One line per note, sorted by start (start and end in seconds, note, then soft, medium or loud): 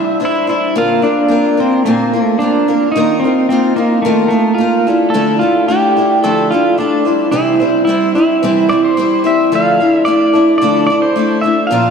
0.00 0.19 G3 soft
0.00 0.19 D4 soft
0.00 0.20 E4 medium
0.00 0.19 C5 soft
0.00 0.16 E5 medium
0.20 0.48 G3 medium
0.20 0.48 D4 medium
0.20 0.46 E4 medium
0.20 0.46 C5 medium
0.25 0.49 E4 medium
0.47 0.75 G3 soft
0.47 0.76 D4 medium
0.47 0.75 E4 medium
0.47 0.77 E4 medium
0.47 0.75 C5 medium
0.75 1.03 A#2 medium
0.75 1.03 D3 medium
0.75 1.03 A#3 medium
0.75 1.03 C4 medium
0.75 1.03 F4 medium
0.75 1.02 F4 medium
0.75 1.01 A#4 medium
1.02 1.27 A#3 soft
1.02 1.28 C4 soft
1.02 1.60 D4 medium
1.02 1.30 F4 soft
1.02 1.30 A#4 soft
1.28 1.57 A#3 medium
1.28 1.57 C4 medium
1.28 1.57 F4 medium
1.28 1.56 A#4 medium
1.57 1.86 A#3 soft
1.57 1.85 C4 soft
1.57 1.85 C4 medium
1.57 1.85 F4 soft
1.57 1.85 A#4 medium
1.85 2.13 A#2 medium
1.85 2.13 D3 medium
1.85 2.22 A#3 medium
1.85 2.13 A#3 medium
1.85 2.13 C4 medium
1.85 2.13 F4 medium
1.85 2.12 A#4 medium
2.13 2.39 A#3 soft
2.13 2.40 C4 soft
2.13 2.41 F4 soft
2.13 2.40 A#4 medium
2.22 2.36 A3 medium
2.39 2.67 A#3 medium
2.39 2.68 C4 medium
2.39 2.90 D4 medium
2.39 2.67 F4 medium
2.43 2.67 A#4 medium
2.68 2.95 A#3 soft
2.68 2.96 C4 soft
2.68 2.95 F4 soft
2.68 2.95 A#4 medium
2.92 3.23 D#3 medium
2.92 3.19 D#4 medium
2.97 3.23 A#3 medium
2.97 3.23 D#4 medium
2.97 3.24 F4 medium
2.97 3.23 A#4 medium
3.20 3.48 C4 medium
3.24 3.50 D#4 soft
3.24 3.51 F4 soft
3.24 3.50 A#4 soft
3.49 3.77 A#3 medium
3.49 3.76 C4 medium
3.49 3.77 D#4 medium
3.49 3.77 F4 medium
3.49 3.75 A#4 medium
3.76 4.02 A#3 medium
3.76 4.05 D#4 soft
3.76 4.05 F4 medium
3.76 4.04 A#4 medium
4.02 4.32 D#3 medium
4.02 4.27 A3 medium
4.02 4.32 A#3 medium
4.02 4.31 D#4 medium
4.02 4.29 A#4 medium
4.06 4.30 F4 medium
4.28 4.58 A3 medium
4.28 4.59 D#4 soft
4.28 4.59 F4 soft
4.28 4.58 A#4 medium
4.55 4.86 A#3 medium
4.55 5.13 F4 medium
4.60 4.87 D#4 medium
4.60 4.87 F4 medium
4.60 4.86 A#4 medium
4.87 5.14 A3 soft
4.87 5.13 D4 soft
4.87 5.13 E4 soft
4.87 5.14 A4 medium
5.10 5.41 D3 medium
5.10 5.37 A4 medium
5.14 5.41 F3 medium
5.14 5.42 A3 medium
5.14 5.41 D4 medium
5.14 5.40 E4 medium
5.14 5.40 A4 medium
5.39 5.67 A3 soft
5.39 5.68 D4 soft
5.39 5.69 E4 soft
5.39 5.68 F4 loud
5.39 5.68 A4 soft
5.68 5.96 A3 medium
5.68 5.96 D4 medium
5.68 5.96 E4 medium
5.68 6.19 G4 loud
5.68 5.95 A4 medium
5.97 6.23 A3 soft
5.97 6.23 D4 medium
5.97 6.23 E4 medium
5.97 6.24 A4 medium
6.23 6.51 D3 medium
6.23 6.51 F3 medium
6.23 6.51 A3 medium
6.23 6.51 D4 medium
6.23 6.51 E4 medium
6.23 6.52 A4 medium
6.23 6.51 A4 medium
6.51 6.77 A3 soft
6.51 6.77 D4 soft
6.51 6.79 E4 soft
6.51 6.76 F4 medium
6.51 6.79 A4 medium
6.78 7.05 A3 medium
6.78 7.06 D4 medium
6.78 7.29 D4 medium
6.78 7.05 E4 medium
6.78 7.05 A4 medium
7.05 7.31 G3 soft
7.05 7.32 C4 soft
7.05 7.33 E4 medium
7.05 7.32 C5 medium
7.32 7.60 C3 medium
7.32 7.60 E3 medium
7.32 7.60 G3 medium
7.32 7.60 C4 medium
7.32 7.84 E4 medium
7.32 7.60 E4 medium
7.32 7.59 C5 medium
7.60 7.86 G3 soft
7.60 7.87 C4 soft
7.60 7.88 E4 soft
7.60 7.87 C5 medium
7.85 8.14 G3 medium
7.85 8.15 C4 medium
7.85 8.11 E4 medium
7.89 8.15 E4 medium
7.89 8.14 C5 medium
8.15 8.42 G3 soft
8.15 8.43 C4 medium
8.15 9.20 E4 medium
8.15 8.43 E4 medium
8.15 8.42 C5 medium
8.43 8.69 C3 medium
8.43 8.69 E3 medium
8.43 8.70 G3 medium
8.43 8.70 C4 medium
8.43 8.70 E4 medium
8.43 8.68 C5 medium
8.69 8.97 C4 medium
8.69 8.97 E4 medium
8.69 8.96 C5 medium
8.69 8.82 D5 medium
8.73 8.96 G3 soft
8.85 9.22 C5 medium
8.97 9.24 G3 medium
8.97 9.24 C4 medium
8.97 9.24 E4 medium
8.97 9.23 C5 medium
9.24 9.52 G3 soft
9.24 9.52 C4 soft
9.24 9.52 E4 medium
9.24 9.51 C5 medium
9.24 9.53 E5 medium
9.52 9.79 D3 medium
9.52 9.79 F3 medium
9.52 9.79 A3 medium
9.52 9.79 D4 medium
9.52 9.79 E4 medium
9.52 9.79 A4 medium
9.52 10.05 F5 medium
9.80 10.05 A3 soft
9.80 10.06 D4 soft
9.80 10.07 E4 soft
9.80 10.06 A4 soft
10.05 10.33 A3 medium
10.05 10.34 D4 medium
10.05 10.34 E4 medium
10.05 10.32 A4 medium
10.05 10.57 D5 loud
10.33 10.60 A3 soft
10.33 10.61 D4 medium
10.33 10.61 E4 medium
10.33 10.60 A4 medium
10.58 10.88 D3 medium
10.58 10.88 F3 medium
10.58 10.88 A3 medium
10.58 10.85 D5 medium
10.62 10.88 D4 medium
10.62 10.88 E4 medium
10.62 10.88 A4 medium
10.87 11.16 A4 medium
10.87 11.01 D5 medium
10.91 11.14 A3 medium
10.91 11.16 D4 soft
10.91 11.16 E4 medium
11.02 11.42 C5 medium
11.16 11.42 A3 medium
11.16 11.43 D4 medium
11.16 11.43 E4 medium
11.16 11.42 A4 medium
11.41 11.70 E4 medium
11.41 11.70 A4 medium
11.41 11.69 E5 medium
11.46 11.71 A3 soft
11.46 11.71 D4 soft
11.67 11.90 A#2 medium
11.67 11.90 F5 medium
11.71 11.90 F3 medium
11.71 11.90 A#3 medium
11.71 11.90 D4 medium
11.71 11.90 F4 medium
11.71 11.90 A#4 medium